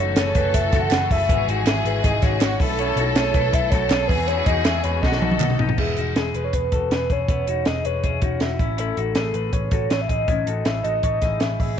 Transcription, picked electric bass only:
0.00 0.13 F#1 loud
0.17 0.32 F#1 loud
0.35 0.51 F#1 medium
0.54 0.70 F#1 loud
0.73 0.88 F#1 medium
0.91 1.06 F#1 loud
1.11 1.29 F#1 loud
1.29 1.45 G#1 loud
1.49 1.64 G#1 loud
1.66 1.82 G#1 loud
1.85 2.00 G#1 medium
2.04 2.19 G#1 loud
2.23 2.38 G#1 loud
2.41 2.56 G#1 loud
2.60 2.90 B1 loud
2.96 3.12 B1 medium
3.15 3.31 B1 medium
3.34 3.50 B1 medium
3.53 3.68 B1 loud
3.72 3.87 B1 loud
3.89 4.05 B1 loud
4.09 4.40 E2 loud
4.46 4.62 E2 medium
4.65 4.81 E2 loud
4.84 5.00 E2 medium
5.03 5.18 B1 loud
5.22 5.37 B1 loud
5.40 5.56 B1 loud
5.59 5.74 B1 loud
5.78 5.93 E1 loud
5.97 6.12 E1 medium
6.15 6.31 E1 medium
6.34 6.50 E1 medium
6.53 6.68 E1 medium
6.72 6.87 E1 medium
6.91 7.06 E1 medium
7.10 7.25 E1 medium
7.29 7.44 E1 medium
7.47 7.62 E1 medium
7.67 7.82 E1 medium
7.85 8.00 E1 medium
8.04 8.19 E1 loud
8.22 8.37 E1 medium
8.41 8.56 E1 medium
8.59 8.90 A1 medium
8.97 9.13 A1 medium
9.16 9.31 A1 medium
9.34 9.50 A1 medium
9.53 9.68 A1 loud
9.72 9.87 A1 loud
9.91 10.06 A1 medium
10.09 10.25 A1 loud
10.28 10.43 A1 loud
10.47 10.62 A1 medium
10.66 10.81 A1 medium
10.84 11.00 A1 medium
11.04 11.19 A1 medium
11.22 11.37 A1 loud
11.41 11.56 A1 medium
11.60 11.75 A1 medium

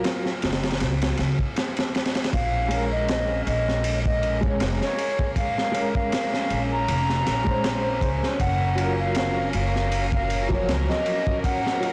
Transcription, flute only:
2.33 2.85 F5 medium
2.92 3.41 D#5 medium
3.47 3.99 D#5 medium
4.06 4.39 D#5 medium
4.82 5.32 C#5 medium
5.37 5.89 F5 loud
5.95 6.63 F5 medium
6.72 8.27 A#5 loud
8.40 8.93 F#5 loud
8.99 9.49 F5 medium
9.55 10.07 F5 medium
10.14 10.47 F5 medium
10.89 11.39 D#5 loud
11.45 11.93 F#5 loud

